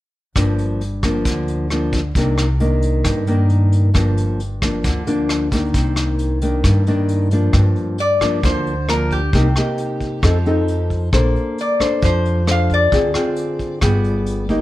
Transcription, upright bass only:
0, 0, Header, 1, 2, 480
1, 0, Start_track
1, 0, Key_signature, -2, "minor"
1, 0, Tempo, 448766
1, 387, Time_signature, 4, 2, 24, 8
1, 15631, End_track
2, 0, Start_track
2, 0, Title_t, "Upright bass"
2, 0, Program_c, 0, 32
2, 380, Note_on_c, 0, 31, 76
2, 1301, Note_off_c, 0, 31, 0
2, 1340, Note_on_c, 0, 38, 78
2, 2260, Note_off_c, 0, 38, 0
2, 2302, Note_on_c, 0, 36, 80
2, 3222, Note_off_c, 0, 36, 0
2, 3260, Note_on_c, 0, 43, 83
2, 4180, Note_off_c, 0, 43, 0
2, 4222, Note_on_c, 0, 31, 79
2, 5141, Note_off_c, 0, 31, 0
2, 5182, Note_on_c, 0, 38, 77
2, 6101, Note_off_c, 0, 38, 0
2, 6139, Note_on_c, 0, 36, 73
2, 7059, Note_off_c, 0, 36, 0
2, 7099, Note_on_c, 0, 43, 89
2, 8019, Note_off_c, 0, 43, 0
2, 8055, Note_on_c, 0, 43, 90
2, 8283, Note_off_c, 0, 43, 0
2, 9020, Note_on_c, 0, 38, 97
2, 9939, Note_off_c, 0, 38, 0
2, 9980, Note_on_c, 0, 36, 90
2, 10205, Note_off_c, 0, 36, 0
2, 10939, Note_on_c, 0, 41, 95
2, 11859, Note_off_c, 0, 41, 0
2, 11902, Note_on_c, 0, 34, 83
2, 12126, Note_off_c, 0, 34, 0
2, 12863, Note_on_c, 0, 41, 95
2, 13781, Note_off_c, 0, 41, 0
2, 13822, Note_on_c, 0, 38, 89
2, 14046, Note_off_c, 0, 38, 0
2, 14776, Note_on_c, 0, 31, 92
2, 15631, Note_off_c, 0, 31, 0
2, 15631, End_track
0, 0, End_of_file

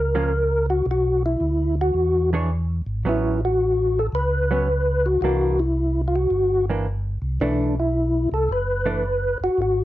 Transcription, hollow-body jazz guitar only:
0, 0, Header, 1, 2, 480
1, 0, Start_track
1, 0, Tempo, 544959
1, 765, Time_signature, 4, 2, 24, 8
1, 8667, End_track
2, 0, Start_track
2, 0, Title_t, "Hollow-body jazz guitar"
2, 0, Program_c, 0, 26
2, 132, Note_on_c, 0, 53, 52
2, 136, Note_on_c, 0, 58, 55
2, 140, Note_on_c, 0, 61, 59
2, 272, Note_off_c, 0, 53, 0
2, 274, Note_off_c, 0, 58, 0
2, 276, Note_off_c, 0, 61, 0
2, 2052, Note_on_c, 0, 52, 58
2, 2058, Note_on_c, 0, 62, 62
2, 2064, Note_on_c, 0, 68, 61
2, 2067, Note_on_c, 0, 73, 58
2, 2193, Note_off_c, 0, 52, 0
2, 2196, Note_off_c, 0, 62, 0
2, 2199, Note_off_c, 0, 68, 0
2, 2200, Note_off_c, 0, 73, 0
2, 2689, Note_on_c, 0, 54, 49
2, 2700, Note_on_c, 0, 59, 58
2, 2701, Note_on_c, 0, 61, 53
2, 2977, Note_off_c, 0, 54, 0
2, 2982, Note_off_c, 0, 59, 0
2, 2983, Note_off_c, 0, 61, 0
2, 3970, Note_on_c, 0, 54, 59
2, 3976, Note_on_c, 0, 59, 53
2, 3981, Note_on_c, 0, 61, 60
2, 4112, Note_off_c, 0, 54, 0
2, 4115, Note_off_c, 0, 59, 0
2, 4118, Note_off_c, 0, 61, 0
2, 4615, Note_on_c, 0, 52, 56
2, 4620, Note_on_c, 0, 58, 59
2, 4625, Note_on_c, 0, 62, 62
2, 4899, Note_off_c, 0, 52, 0
2, 4902, Note_off_c, 0, 58, 0
2, 4904, Note_off_c, 0, 62, 0
2, 5897, Note_on_c, 0, 52, 49
2, 5904, Note_on_c, 0, 58, 47
2, 5904, Note_on_c, 0, 62, 52
2, 6035, Note_off_c, 0, 52, 0
2, 6038, Note_off_c, 0, 58, 0
2, 6039, Note_off_c, 0, 62, 0
2, 6529, Note_on_c, 0, 52, 60
2, 6533, Note_on_c, 0, 57, 57
2, 6538, Note_on_c, 0, 62, 55
2, 6816, Note_off_c, 0, 52, 0
2, 6818, Note_off_c, 0, 57, 0
2, 6821, Note_off_c, 0, 62, 0
2, 7801, Note_on_c, 0, 52, 54
2, 7801, Note_on_c, 0, 57, 54
2, 7807, Note_on_c, 0, 62, 60
2, 7946, Note_off_c, 0, 52, 0
2, 7946, Note_off_c, 0, 57, 0
2, 7949, Note_off_c, 0, 62, 0
2, 8667, End_track
0, 0, End_of_file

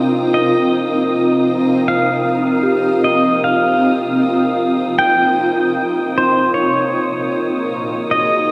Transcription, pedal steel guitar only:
0, 0, Header, 1, 2, 480
1, 0, Start_track
1, 0, Tempo, 779221
1, 190, Time_signature, 4, 2, 24, 8
1, 5246, End_track
2, 0, Start_track
2, 0, Title_t, "Pedal steel guitar"
2, 0, Program_c, 0, 26
2, 210, Note_on_c, 0, 75, 86
2, 1156, Note_off_c, 0, 75, 0
2, 1159, Note_on_c, 0, 77, 95
2, 1872, Note_off_c, 0, 77, 0
2, 1875, Note_on_c, 0, 75, 91
2, 2117, Note_off_c, 0, 75, 0
2, 2120, Note_on_c, 0, 77, 99
2, 3069, Note_off_c, 0, 77, 0
2, 3071, Note_on_c, 0, 79, 111
2, 3805, Note_on_c, 0, 72, 96
2, 3812, Note_off_c, 0, 79, 0
2, 4027, Note_off_c, 0, 72, 0
2, 4029, Note_on_c, 0, 73, 100
2, 4997, Note_on_c, 0, 75, 97
2, 5019, Note_off_c, 0, 73, 0
2, 5246, Note_off_c, 0, 75, 0
2, 5246, End_track
0, 0, End_of_file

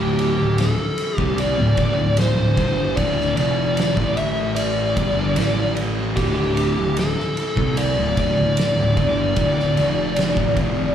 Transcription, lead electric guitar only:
0, 0, Header, 1, 2, 480
1, 0, Start_track
1, 0, Key_signature, -1, "minor"
1, 0, Tempo, 798935
1, 1789, Time_signature, 4, 2, 24, 8
1, 6578, End_track
2, 0, Start_track
2, 0, Title_t, "Lead electric guitar"
2, 0, Program_c, 0, 29
2, 0, Note_on_c, 0, 67, 86
2, 361, Note_off_c, 0, 67, 0
2, 363, Note_on_c, 0, 69, 85
2, 717, Note_off_c, 0, 69, 0
2, 717, Note_on_c, 0, 67, 85
2, 841, Note_on_c, 0, 74, 93
2, 850, Note_off_c, 0, 67, 0
2, 1314, Note_off_c, 0, 74, 0
2, 1316, Note_on_c, 0, 72, 88
2, 1781, Note_off_c, 0, 72, 0
2, 1784, Note_on_c, 0, 74, 112
2, 2009, Note_off_c, 0, 74, 0
2, 2022, Note_on_c, 0, 74, 107
2, 2504, Note_off_c, 0, 74, 0
2, 2506, Note_on_c, 0, 76, 104
2, 2736, Note_off_c, 0, 76, 0
2, 2738, Note_on_c, 0, 74, 93
2, 3440, Note_off_c, 0, 74, 0
2, 3703, Note_on_c, 0, 67, 94
2, 4198, Note_off_c, 0, 67, 0
2, 4200, Note_on_c, 0, 69, 95
2, 4671, Note_on_c, 0, 74, 110
2, 4689, Note_off_c, 0, 69, 0
2, 4918, Note_off_c, 0, 74, 0
2, 4924, Note_on_c, 0, 74, 97
2, 6578, Note_off_c, 0, 74, 0
2, 6578, End_track
0, 0, End_of_file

